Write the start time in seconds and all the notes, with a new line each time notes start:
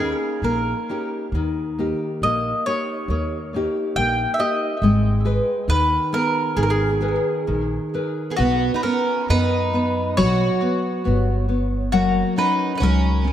Already playing: D#2 A#3 G#4
0.00 C#4 D#4 G5
0.42 A#1 A#3 A#4
0.89 C#4 D#4 G4
1.32 D#2 D#3
1.79 A#3 D#4 G4
2.22 A#1 A#3 D#5
2.66 A#3 D#4 G4 C#5
3.08 D#2 A#3
3.54 A#3 D#4 G4
3.96 A#1 A#3 G5
4.34 E5
4.39 A#3 D#4 G4 D#5
4.82 G#1 G#3
5.25 G#4 B4
5.68 D#2 D#3 B4
6.12 B3 G#4 A#4
6.57 G#1 D#3 G#4
6.63 A#4
6.70 G#4
7.01 G#4 A#4 B4
7.47 A#1 D#3
7.94 G#4 A#4 B4
8.30 B3 G#4
8.36 B1 B3 F#4
8.74 D#4 B4
8.83 B3 C#4 A#4
9.29 F#2 B3 D#4 B4
9.74 B3
10.17 B1 F#3 F#4 C#5
10.62 B3
11.05 G1 B3
11.49 B3
11.92 F#1 F#3 A#3 F#4
12.38 C#4 D#4 B4
12.75 D#4 B4
12.80 C#2 F#3 C#4 A#4
13.24 C#4